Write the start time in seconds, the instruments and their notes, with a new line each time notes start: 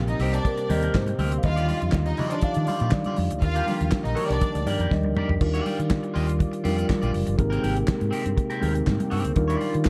Already playing: fingered electric bass A#1, tonewheel organ C3 G3 A#3 G4, tine electric piano G3 A#3 C4
0.08 string section D#4 D#5, muted clean electric guitar stroke, closed hi-hat
0.19 fingered electric bass C2, clean electric guitar C4 G4 A#4, tine electric piano C5, open hi-hat
0.32 string section D4 D5, muted clean electric guitar stroke, closed hi-hat
0.45 tine electric piano A#4, muted clean electric guitar stroke, kick, closed hi-hat
0.57 muted clean electric guitar stroke, closed hi-hat
0.69 fingered electric bass D#2, clean electric guitar C4 G4 A#4, tine electric piano D#5, open hi-hat, muted conga
0.82 clean electric guitar C4 G4 A#4, closed hi-hat
0.95 fingered electric bass G#2, tine electric piano C5, kick, snare, clap, high conga
1.07 muted clean electric guitar stroke, closed hi-hat, high conga
1.19 fingered electric bass D2, clean electric guitar C4 G4 A#4, open hi-hat, high conga
1.32 muted clean electric guitar stroke, closed hi-hat
1.38 tine electric piano F5
1.43 fingered electric bass D#2, tonewheel organ D3 D#3 G3 F4, string section F4 F5, tine electric piano D#5, muted clean electric guitar stroke, kick, closed hi-hat, muted conga
1.56 clean electric guitar F4 G4 D5, closed hi-hat
1.68 clean electric guitar F4 G4 D5, open hi-hat, muted conga
1.81 fingered electric bass F2, muted clean electric guitar stroke, closed hi-hat
1.92 fingered electric bass D#2, kick, snare, clap, high conga
2.06 string section D#4 D#5, muted clean electric guitar stroke, closed hi-hat
2.17 tine electric piano F3 G3 D4, clean electric guitar F4 G4 D#5, open hi-hat, low conga
2.31 string section D4 D5, muted clean electric guitar stroke, closed hi-hat
2.41 tine electric piano F5, muted clean electric guitar stroke, muted fingered electric bass stroke, kick, closed hi-hat
2.54 fingered electric bass D#3, muted clean electric guitar stroke, closed hi-hat
2.67 clean electric guitar F4 G4 D5, tine electric piano F5, open hi-hat, muted conga
2.80 fingered electric bass A#2, clean electric guitar F4 G4 D5, closed hi-hat
2.91 fingered electric bass D#3, tine electric piano D5, kick, snare, clap, high conga
3.04 clean electric guitar F4 G4 D5, closed hi-hat, high conga
3.16 fingered electric bass F2, muted clean electric guitar stroke, open hi-hat, high conga
3.31 fingered electric bass D2, muted clean electric guitar stroke, closed hi-hat
3.40 fingered electric bass D#2, tonewheel organ D3 A#3 G4, string section F4 F5, muted clean electric guitar stroke, kick, closed hi-hat
3.55 clean electric guitar G4 A#4 D5, closed hi-hat
3.66 tine electric piano F3 G3 D4, clean electric guitar G4 A#4 D5, open hi-hat, muted conga
3.79 fingered electric bass D#2, muted clean electric guitar stroke, closed hi-hat
3.91 kick, snare, clap, high conga
4.03 fingered electric bass A#1, string section D#4 D#5, muted clean electric guitar stroke, closed hi-hat
4.15 clean electric guitar G4 A#4 D5, tine electric piano A#4, open hi-hat
4.27 fingered electric bass C2, string section D4 D5, muted clean electric guitar stroke, closed hi-hat
4.41 muted clean electric guitar stroke, kick, closed hi-hat
4.55 fingered electric bass D2, muted clean electric guitar stroke, closed hi-hat
4.66 fingered electric bass G2, clean electric guitar G4 A#4 D5, tine electric piano D5, open hi-hat, muted conga
4.79 fingered electric bass F2, clean electric guitar G4 A#4 D5, closed hi-hat
4.91 fingered electric bass D#2, tine electric piano F3 G3 D4 D#5, kick, snare, high conga
5.03 fingered electric bass D2, muted clean electric guitar stroke, high conga
5.15 clean electric guitar G4 A#4 D5, mid tom, high conga
5.29 fingered electric bass F2, muted clean electric guitar stroke, floor tom
5.39 fingered electric bass D#2, tonewheel organ D#3 G3 F4 D5, tine electric piano G3 D4 D#4 F4 A#4, muted clean electric guitar stroke, kick, crash
5.54 clean electric guitar F4 G4 D5, closed hi-hat
5.65 clean electric guitar F4 G4 D5, open hi-hat, muted conga
5.78 fingered electric bass D#3, muted clean electric guitar stroke, closed hi-hat
5.90 kick, snare, clap, high conga
6.03 muted clean electric guitar stroke, closed hi-hat
6.14 fingered electric bass D#2, clean electric guitar F4 G4 D#5, open hi-hat
6.28 muted clean electric guitar stroke, closed hi-hat
6.39 muted clean electric guitar stroke, kick, closed hi-hat
6.52 muted clean electric guitar stroke, closed hi-hat
6.63 fingered electric bass F2, tine electric piano F3 D4 D#4 F4 A#4, clean electric guitar F4 G4 D5, open hi-hat, muted conga
6.69 tine electric piano G3
6.76 clean electric guitar F4 G4 D5, closed hi-hat
6.88 muted clean electric guitar stroke, kick, snare, clap, high conga
7.02 fingered electric bass A#1, clean electric guitar F4 G4 D5, closed hi-hat, high conga
7.12 fingered electric bass F#1, muted clean electric guitar stroke, open hi-hat
7.27 fingered electric bass G1, muted clean electric guitar stroke, closed hi-hat
7.37 fingered electric bass G#1, tonewheel organ C3 G#3 A#3 G4, tine electric piano G#3 C4 D#4 G4 A#4, muted clean electric guitar stroke, kick, closed hi-hat, muted conga
7.50 clean electric guitar C4 G4 A#4, closed hi-hat
7.63 fingered electric bass G#1, clean electric guitar C4 G4 A#4, open hi-hat, muted conga
7.76 muted clean electric guitar stroke, closed hi-hat
7.88 kick, snare, clap, high conga
8.00 fingered electric bass G#2, muted clean electric guitar stroke, closed hi-hat
8.11 clean electric guitar C4 G4 A#4, open hi-hat
8.25 fingered electric bass G2, muted clean electric guitar stroke, closed hi-hat
8.36 muted clean electric guitar stroke, kick, closed hi-hat
8.50 clean electric guitar C4 G4 A#4, closed hi-hat
8.60 fingered electric bass D#2, tine electric piano G#3 C4 D#4 G4 G#4, clean electric guitar C4 G4 A#4, open hi-hat, muted conga
8.68 tine electric piano A#4
8.74 muted clean electric guitar stroke, closed hi-hat
8.87 fingered electric bass G#2, kick, snare, clap, high conga
8.99 muted clean electric guitar stroke, closed hi-hat, high conga
9.10 fingered electric bass G2, clean electric guitar C4 G4 A#4, open hi-hat
9.23 fingered electric bass D2, muted clean electric guitar stroke, closed hi-hat
9.35 fingered electric bass D#2, tonewheel organ D#3 G3 F4 D5, tine electric piano G3 D4 D#4 F4 A#4, muted clean electric guitar stroke, kick, closed hi-hat, muted conga
9.48 clean electric guitar F4 G4 D5, closed hi-hat
9.59 clean electric guitar F4 G4 D5, open hi-hat, muted conga
9.73 fingered electric bass D#3, muted clean electric guitar stroke, closed hi-hat
9.85 kick, snare, clap, high conga